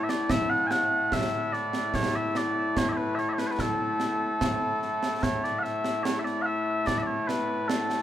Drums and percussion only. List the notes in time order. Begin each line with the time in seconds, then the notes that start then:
0.09 snare
0.29 concert bass drum, snare
0.71 snare
1.12 concert bass drum, snare
1.53 snare
1.73 snare
1.94 concert bass drum, snare
2.35 snare
2.77 concert bass drum, snare
3.18 snare
3.38 snare
3.59 concert bass drum, snare
4.00 snare
4.41 concert bass drum, snare
4.82 snare
5.03 snare
5.23 concert bass drum, snare
5.44 snare
5.65 snare
5.84 snare
6.05 snare
6.26 snare
6.87 concert bass drum, snare
7.29 snare
7.70 snare
7.90 snare